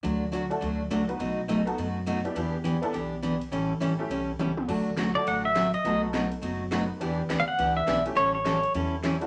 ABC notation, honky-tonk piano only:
X:1
M:4/4
L:1/8
Q:"Swing" 1/4=207
K:D
V:1 name="Honky-tonk piano"
z3 [A,DFA] z3 [B,_EFB] | z3 [B,^DFA] z3 [B,=DEG] | [B,DEG] z2 [B,DEA] z4 | z3 [A,CEG] z4 |
[A,DFA] z2 [A,DFA] z4 | [B,^DFA]3 z3 [B,DFB] z | [B,DEG] z6 [A,CEG] | z6 z [A,DEF] |]